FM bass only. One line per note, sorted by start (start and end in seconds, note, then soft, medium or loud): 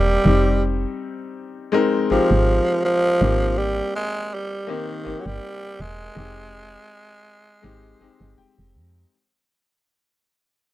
0.00 0.18 E1 loud
0.25 0.86 F1 loud
2.11 2.19 G#1 soft
2.31 2.61 G#1 medium
3.21 3.82 G#1 loud
5.07 5.14 G1 soft
5.26 5.40 G1 loud
5.80 6.10 E1 loud
6.16 6.77 F1 loud
7.64 7.95 G#1 medium
8.01 8.09 G1 soft
8.21 8.35 G1 loud
8.38 8.46 F1 soft
8.59 8.77 F1 medium
8.75 9.05 F2 loud